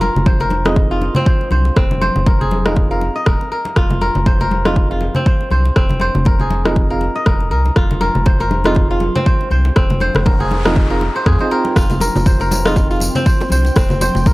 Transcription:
Already playing: kora F4 D#5
0.01 kora A#4, high conga
0.15 analog synth bass F1, low conga
0.26 kora C5, kick, muted conga, high conga
0.40 kora A#4, low conga
0.50 muted conga, high conga
0.65 synth stab C4 D#4 F4 G#4 D#5, kora D#5, cross-stick, high conga
0.76 kick, muted conga
0.91 synth stab C4 D#4 F4 G#4 F5, kora F4
1.01 muted conga, high conga
1.15 kora C4, low conga
1.26 kora C5, kick
1.41 muted conga
1.51 analog synth bass C2, kora C5, high conga
1.65 muted conga
1.76 analog synth bass F1, kora C4, kick, cross-stick
1.91 muted conga, low conga
2.01 kora C5, high conga
2.16 analog synth bass F1, low conga
2.26 kora A#4, kick, muted conga, high conga
2.41 kora G#4, low conga
2.51 muted conga, high conga
2.66 synth stab C4 D#4 F4 G#4 D#5, kora A#4, cross-stick, high conga
2.76 kick, muted conga
2.91 synth stab C4 D#4 F4 G#4 F5, kora A#4
3.01 muted conga
3.16 kora D#5
3.26 analog synth bass D#1, kora A#4, kick, cross-stick
3.41 muted conga
3.52 kora A#4
3.65 muted conga
3.76 analog synth bass F1, kora F4, kick, cross-stick
3.90 muted conga, low conga
4.01 kora A#4, high conga
4.15 analog synth bass F1, low conga
4.26 kora C5, kick, muted conga, high conga
4.41 kora A#4, low conga
4.51 muted conga, high conga
4.65 synth stab C4 D#4 F4 G#4 D#5, kora F4, cross-stick, high conga
4.76 kick, muted conga
4.90 synth stab C4 D#4 F4 G#4 F5, kora F4
5.01 muted conga, high conga
5.15 kora C4, low conga
5.26 kora C5, kick
5.41 muted conga
5.51 analog synth bass C2, kora C5, high conga
5.65 muted conga
5.76 analog synth bass F1, kora C4, kick, cross-stick
5.89 muted conga, low conga
6.00 kora C5, high conga
6.15 analog synth bass F1, low conga
6.25 kora A#4, kick, muted conga, high conga
6.40 kora G#4, low conga
6.50 muted conga, high conga
6.65 synth stab C4 D#4 F4 G#4 D#5, kora A#4, cross-stick, high conga
6.76 kick, muted conga
6.90 synth stab C4 D#4 F4 G#4 F5, kora A#4
7.01 muted conga
7.16 kora D#5
7.26 analog synth bass F1, kora A#4, kick, cross-stick
7.40 muted conga
7.51 analog synth bass C2, kora A#4
7.65 muted conga
7.76 analog synth bass F1, kora F4, kick, cross-stick
7.91 muted conga, low conga
8.01 kora A#4, high conga
8.15 analog synth bass F1, low conga
8.26 kora C5, kick, muted conga, high conga
8.40 kora A#4, low conga
8.51 muted conga, high conga
8.64 synth stab C4 D#4 F4 G#4 D#5, kora F4, cross-stick, high conga
8.75 kick, muted conga
8.91 synth stab C4 D#4 F4 G#4 F5, kora F4
9.00 muted conga, high conga
9.15 kora C4, low conga
9.26 kora C5, kick
9.41 muted conga
9.51 analog synth bass C2, kora C5, high conga
9.65 muted conga
9.76 analog synth bass F1, kora C4, kick, cross-stick, noise sweep
9.90 muted conga, low conga
10.00 kora C5, high conga
10.15 analog synth bass F1, cross-stick, low conga
10.26 kora A#4, kick, muted conga, high conga
10.40 kora G#4, low conga
10.51 muted conga, high conga
10.65 synth stab C4 D#4 F4 G#4 D#5, kora A#4, cross-stick, high conga
10.75 kick, muted conga
10.90 synth stab C4 D#4 F4 G#4 F5, kora A#4
11.01 muted conga
11.16 kora C5
11.26 analog synth bass F2, kora G#4, kick, cross-stick
11.39 synth stab C4 D#4 F4 G#4 D#5, kora C5, muted conga
11.51 synth stab C4 D#4 F4 G#4 G5, kora A#4
11.65 muted conga
11.76 analog synth bass F1, ambient pad F3 C4 G5, kora F4, kick, cross-stick, tambourine
11.90 tambourine, low bongo, muted conga, low conga
12.00 kora A#4, tambourine, high conga
12.15 analog synth bass F1, tambourine, low bongo, low conga
12.26 kora C5, kick, tambourine, muted conga, high conga
12.40 kora A#4, tambourine, low conga
12.51 tambourine, low bongo, muted conga, high conga
12.65 synth stab C4 D#4 F4 G#4 D#5, kora F4, cross-stick, tambourine, high bongo, high conga
12.76 kick, tambourine, low bongo, muted conga
12.91 synth stab C4 D#4 F4 G#4 F5, kora F4, tambourine
13.00 tambourine, muted conga, high conga
13.15 kora C4, tambourine, low bongo, low conga
13.26 kora C5, kick, tambourine
13.40 tambourine, high bongo, low bongo, muted conga
13.50 analog synth bass C2, kora C5, tambourine, high conga
13.65 tambourine, muted conga
13.76 analog synth bass F1, kora C4, kick, cross-stick, tambourine, low bongo
13.89 tambourine, muted conga, low conga
14.01 kora C5, tambourine, low bongo, high conga
14.15 analog synth bass F1, tambourine, low conga
14.26 kora A#4, kick, tambourine, muted conga, high conga

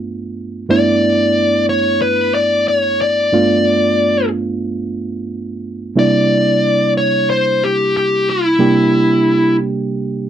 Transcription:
Already playing: reed electric piano G2 A3 B3 D4 F4
0.69 reed electric piano G2 A3 B3 D4 E4, lead electric guitar D5
1.69 lead electric guitar C#5
2.02 lead electric guitar B4
2.34 lead electric guitar D5
2.68 lead electric guitar C#5
3.01 lead electric guitar D5
3.32 reed electric piano G2 A3 B3 D4 F4
5.95 reed electric piano C3 G3 A#3 D4 E4, lead electric guitar D5
6.97 lead electric guitar C#5
7.30 lead electric guitar C5
7.64 lead electric guitar G4
7.97 lead electric guitar G4
8.30 lead electric guitar E4
8.59 reed electric piano C3 G3 A#3 D4 G4

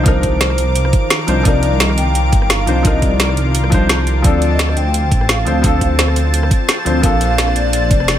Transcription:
Already playing: detuned saw bass C2, analog synth pad D#3 F4 A#4 D6, felt piano F3 C4 D4 D#4 A#4 C5
0.03 felt piano F3 D4 D#4, vibraphone C5, kick, closed hi-hat
0.08 felt piano A#4
0.23 kick, closed hi-hat
0.41 vibraphone C5, snare, closed hi-hat
0.50 cross-stick
0.58 detuned saw bass C2, closed hi-hat
0.76 closed hi-hat
0.85 cross-stick
0.93 kick, closed hi-hat
1.10 snare, closed hi-hat
1.27 detuned saw bass C2, felt piano F3 D4 D#4 C5, closed hi-hat
1.43 detuned saw bass C2, felt piano F3 D4 D#4, vibraphone D5, kick, closed hi-hat
1.48 felt piano A#4
1.63 closed hi-hat
1.72 vibraphone D#5
1.80 snare, closed hi-hat
1.90 cross-stick
1.98 detuned saw bass C2, vibraphone G5, closed hi-hat
2.15 closed hi-hat
2.32 detuned saw bass G1, kick, closed hi-hat
2.42 cross-stick
2.50 detuned saw bass G1, vibraphone F5, snare, closed hi-hat
2.66 detuned saw bass C2, felt piano F3 D4 D#4 C5, closed hi-hat
2.83 felt piano F3 D4 D#4, vibraphone D#5, kick, closed hi-hat
2.87 felt piano A#4
3.02 vibraphone D5, kick, closed hi-hat
3.20 snare, closed hi-hat
3.29 cross-stick
3.37 detuned saw bass C2, closed hi-hat
3.55 closed hi-hat
3.64 cross-stick
3.70 detuned saw bass C2, felt piano F3 D4 D#4, kick, closed hi-hat
3.74 felt piano C5
3.89 snare, closed hi-hat
4.07 closed hi-hat
4.22 detuned saw bass D2, felt piano F3 C4 D4, analog synth pad C4 A5, vibraphone D5, kick, closed hi-hat
4.27 felt piano A4
4.42 closed hi-hat
4.51 vibraphone D#5
4.59 snare, closed hi-hat
4.69 cross-stick
4.77 detuned saw bass D2, vibraphone G5, closed hi-hat
4.94 closed hi-hat
5.11 detuned saw bass A1, kick, closed hi-hat
5.21 cross-stick
5.29 detuned saw bass A1, vibraphone F5, snare, closed hi-hat
5.45 detuned saw bass D2, felt piano F3 C4 D4 C5, closed hi-hat
5.62 felt piano F3 C4 D4, vibraphone F5, kick, closed hi-hat
5.66 felt piano A4
5.81 vibraphone C5, kick, closed hi-hat
5.99 snare, closed hi-hat
6.08 cross-stick
6.16 detuned saw bass D2, closed hi-hat
6.34 closed hi-hat
6.43 cross-stick
6.51 kick, closed hi-hat
6.69 snare, closed hi-hat
6.85 detuned saw bass D2, felt piano F3 C4 D4 C5, closed hi-hat
7.01 detuned saw bass A#1, felt piano F3 A#3 D4, analog synth pad D4 F4, vibraphone F5, kick, closed hi-hat
7.06 felt piano A4
7.21 closed hi-hat
7.30 vibraphone F5
7.38 snare, closed hi-hat
7.48 cross-stick
7.56 detuned saw bass A#1, vibraphone D5, closed hi-hat
7.73 closed hi-hat
7.91 detuned saw bass F1, kick, closed hi-hat
8.00 cross-stick
8.08 detuned saw bass F1, snare, closed hi-hat

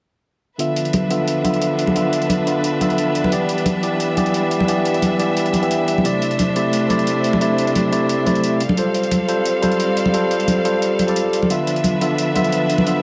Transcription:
0.58 tine electric piano D3 B3 F4 E5, string section F3 D4 B4 E5, closed hi-hat
0.76 closed hi-hat
0.85 closed hi-hat
0.93 closed hi-hat, high conga
1.10 tine electric piano D3 B3 F4 E5, closed hi-hat
1.28 closed hi-hat
1.44 tine electric piano D3 B3 F4 E5, closed hi-hat, high conga
1.54 closed hi-hat
1.62 closed hi-hat
1.79 closed hi-hat
1.87 high conga
1.95 tine electric piano D3 B3 F4 E5, closed hi-hat
2.13 closed hi-hat
2.22 closed hi-hat
2.30 closed hi-hat, high conga
2.46 tine electric piano D3 B3 F4 E5, closed hi-hat
2.64 closed hi-hat
2.80 tine electric piano D3 B3 F4 E5, closed hi-hat, high conga
2.90 closed hi-hat
2.98 closed hi-hat
3.15 closed hi-hat
3.24 high conga
3.31 tine electric piano E3 B3 G4 D5, string section G3, closed hi-hat
3.49 closed hi-hat
3.58 closed hi-hat
3.66 closed hi-hat, high conga
3.82 tine electric piano E3 B3 G4 D5, closed hi-hat
4.00 closed hi-hat
4.16 tine electric piano E3 B3 G4 D5, closed hi-hat, high conga
4.26 closed hi-hat
4.34 closed hi-hat
4.51 closed hi-hat
4.60 high conga
4.67 tine electric piano E3 B3 G4 D5, closed hi-hat
4.85 closed hi-hat
4.94 closed hi-hat
5.02 closed hi-hat, high conga
5.19 tine electric piano E3 B3 G4 D5, closed hi-hat
5.37 closed hi-hat
5.46 closed hi-hat
5.53 closed hi-hat, high conga
5.61 tine electric piano E3 B3 G4 E5, closed hi-hat
5.71 closed hi-hat
5.88 closed hi-hat
5.98 high conga
6.04 tine electric piano C3 A3 E4 D5, string section A3 D4 C5, closed hi-hat
6.22 closed hi-hat
6.31 closed hi-hat
6.39 closed hi-hat, high conga
6.55 tine electric piano C3 A3 E4 D5, closed hi-hat
6.73 closed hi-hat
6.89 tine electric piano C3 A3 E4 D5, closed hi-hat, high conga
6.99 closed hi-hat
7.07 closed hi-hat
7.24 closed hi-hat
7.33 high conga
7.40 tine electric piano C3 A3 E4 D5, closed hi-hat
7.58 closed hi-hat
7.67 closed hi-hat
7.75 closed hi-hat, high conga
7.92 tine electric piano C3 A3 E4 D5, closed hi-hat
8.09 closed hi-hat
8.26 tine electric piano C3 A3 E4 D5, closed hi-hat, high conga
8.35 closed hi-hat
8.44 closed hi-hat
8.60 string section G3 C4 A4 F5, closed hi-hat
8.69 high conga
8.77 tine electric piano G3 F4 A4 C5, closed hi-hat
8.94 closed hi-hat
9.03 closed hi-hat
9.11 closed hi-hat, high conga
9.28 tine electric piano G3 F4 A4 C5, closed hi-hat
9.45 closed hi-hat
9.61 tine electric piano G3 F4 A4 C5, closed hi-hat, high conga
9.72 closed hi-hat
9.80 closed hi-hat
9.97 closed hi-hat
10.06 high conga
10.13 tine electric piano G3 F4 A4 C5, closed hi-hat
10.31 closed hi-hat
10.40 closed hi-hat
10.48 closed hi-hat, high conga
10.65 tine electric piano G3 F4 A4 C5, closed hi-hat
10.82 closed hi-hat
10.99 closed hi-hat, high conga
11.07 tine electric piano G3 F4 A4 D5, closed hi-hat
11.16 closed hi-hat
11.33 closed hi-hat
11.43 high conga
11.49 tine electric piano D3 B3 F4 E5, string section F3 D4 B4 E5, closed hi-hat
11.67 closed hi-hat
11.76 closed hi-hat
11.84 closed hi-hat, high conga
12.01 tine electric piano D3 B3 F4 E5, closed hi-hat
12.18 closed hi-hat
12.34 tine electric piano D3 B3 F4 E5, closed hi-hat, high conga
12.44 closed hi-hat
12.52 closed hi-hat
12.70 closed hi-hat
12.78 high conga
12.86 tine electric piano D3 B3 F4 E5, closed hi-hat

